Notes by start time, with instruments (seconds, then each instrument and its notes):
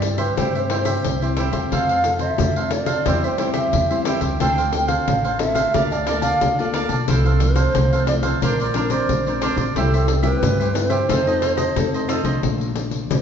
Already playing: upright bass G2, nylon-string guitar G2, shakuhachi D5
0.02 nylon-string guitar G3 C4 E4, muted cavaquinho stroke, pandeiro
0.18 cavaquinho G4 C5 E5, shakuhachi B4, pandeiro
0.36 upright bass G2, nylon-string guitar C3, cavaquinho E4 G4 C5 E5, shakuhachi C5, pandeiro
0.55 cavaquinho G4 C5 E5, pandeiro
0.70 nylon-string guitar G3 C4 E4, cavaquinho E4 G4 C5 E5, pandeiro
0.85 cavaquinho G4 C5 E5, pandeiro
1.04 upright bass C2, nylon-string guitar G2, pandeiro
1.22 nylon-string guitar G3 C4 E4, cavaquinho G4 C5 E5, pandeiro
1.37 cavaquinho E4 G4 C5 E5, pandeiro
1.52 upright bass E2, nylon-string guitar C4 F4 A4, cavaquinho G4 C5 E5, pandeiro
1.72 upright bass F2, nylon-string guitar F3, cavaquinho F4 A4 C5 F5, shakuhachi F5, pandeiro
1.89 cavaquinho A4 C5 F5, pandeiro
2.04 nylon-string guitar C4 F4 A4, muted cavaquinho stroke, pandeiro
2.19 cavaquinho A4 C5, shakuhachi E5, pandeiro
2.38 upright bass F2, nylon-string guitar C3 C4 F4 A4, pandeiro
2.56 cavaquinho A4 C5 F5, pandeiro
2.71 nylon-string guitar C4 F4 A4, shakuhachi D5, muted cavaquinho stroke, pandeiro
2.86 cavaquinho A4 C5 F5, pandeiro
3.06 upright bass E2, nylon-string guitar E3 G3 C4 E4, cavaquinho E4 G4 C5 E5, pandeiro
3.24 cavaquinho G4 C5 E5, shakuhachi C5, pandeiro
3.38 nylon-string guitar G3 C4 E4, cavaquinho E4 G4 C5 E5, pandeiro
3.54 cavaquinho G4 C5 E5, shakuhachi E5, pandeiro
3.73 upright bass E2, nylon-string guitar E3, pandeiro
3.90 nylon-string guitar G3 C4 E4, cavaquinho G4 C5 E5, pandeiro
4.05 cavaquinho E4 G4 C5 E5, pandeiro
4.21 upright bass C#2, cavaquinho G4 C5 E5, pandeiro
4.39 upright bass D2, nylon-string guitar D3 C4 F4 A4, cavaquinho D4 A4 C5 F5, shakuhachi G5, pandeiro
4.58 cavaquinho A4 C5 F5, pandeiro
4.72 nylon-string guitar C4 F4 A4, muted cavaquinho stroke, pandeiro
4.88 cavaquinho A4 C5 F5, shakuhachi F5, pandeiro
5.07 upright bass A1, nylon-string guitar A2, pandeiro
5.24 cavaquinho A4 C5 F5, pandeiro
5.39 nylon-string guitar C4 F4 A4, shakuhachi E5, muted cavaquinho stroke, pandeiro
5.55 cavaquinho A4 C5 F5, pandeiro
5.74 upright bass D2, nylon-string guitar D3 A#3 F4 A4, cavaquinho A#4 D5 F5 A5, pandeiro
5.92 shakuhachi D5, cavaquinho D5 F5 A5, pandeiro
6.06 nylon-string guitar A#3 F4 A4, cavaquinho A#4 D5 F5 A5, pandeiro
6.22 cavaquinho D5 F5 A5, shakuhachi F5, pandeiro
6.41 upright bass D2, nylon-string guitar D3, pandeiro
6.59 nylon-string guitar A#3 F4 A4, cavaquinho D5 F5 A5, pandeiro
6.73 cavaquinho A#4 D5 F5 A5, pandeiro
6.89 upright bass B1, cavaquinho D5 F5 A5, pandeiro
7.08 upright bass C2, nylon-string guitar C3 F3 A3 E4, cavaquinho E4 A4 C5 F5, shakuhachi A4, pandeiro
7.26 cavaquinho A4 C5 F5, pandeiro
7.40 nylon-string guitar F3 A3, muted cavaquinho stroke, pandeiro
7.55 cavaquinho A4 C5 F5, shakuhachi C5, pandeiro
7.75 upright bass C2, nylon-string guitar C3, pandeiro
7.93 cavaquinho A4 C5 F5, pandeiro
8.07 nylon-string guitar F3 A3 E4, shakuhachi D5, muted cavaquinho stroke, pandeiro
8.23 cavaquinho A4 C5 F5, pandeiro
8.42 upright bass A#1, nylon-string guitar A#2 F3 C4 D4, cavaquinho D4 A#4 C5 D5, shakuhachi A#4, pandeiro
8.60 cavaquinho A#4 C5 D5, pandeiro
8.74 nylon-string guitar F3 C4 D4, cavaquinho D4 A#4 C5 D5, pandeiro
8.90 cavaquinho A#4 C5 D5, shakuhachi C5, pandeiro
9.09 upright bass A#1, nylon-string guitar F3, pandeiro
9.27 nylon-string guitar F3 C4 D4, cavaquinho A#4 C5 D5, pandeiro
9.41 cavaquinho D4 A#4 C5 D5, pandeiro
9.57 upright bass A#1, cavaquinho A#4 C5 D5, pandeiro
9.75 upright bass C2, nylon-string guitar C3 G3 C4 E4, cavaquinho E4 G4 C5 E5, shakuhachi A4, pandeiro
9.94 cavaquinho G4 C5 E5, pandeiro
10.08 muted cavaquinho stroke, pandeiro
10.23 nylon-string guitar G3 C4 E4, cavaquinho G4 E5, shakuhachi A#4, pandeiro
10.35 shakuhachi B4
10.42 nylon-string guitar G2, upright bass G2, pandeiro
10.60 cavaquinho G4 C5 E5, pandeiro
10.74 nylon-string guitar G3 C4 E4, muted cavaquinho stroke, pandeiro
10.90 cavaquinho G4 C5 E5, shakuhachi C5, pandeiro
11.09 upright bass F2, nylon-string guitar F3 C4 D#4 A4, cavaquinho F4 A4 C5 D#5, pandeiro
11.27 nylon-string guitar C4 D#4 A4, cavaquinho A4 C5 D#5, pandeiro
11.42 cavaquinho F4 A4 C5 D#5, pandeiro
11.57 cavaquinho A4 C5 D#5, pandeiro
11.76 upright bass F2, nylon-string guitar C3 C4 D#4 A4, pandeiro
11.94 cavaquinho A4 C5 D#5, pandeiro
12.08 cavaquinho F4 A4 C5 D#5, pandeiro
12.24 upright bass C2, nylon-string guitar F3 A3 D4, cavaquinho A4 C5 D#5, pandeiro
12.43 upright bass A#1, nylon-string guitar A#2, pandeiro
12.61 pandeiro
12.75 nylon-string guitar F3 A3 D4, pandeiro
12.91 pandeiro
13.10 upright bass A#1, nylon-string guitar F2, shakuhachi C5, pandeiro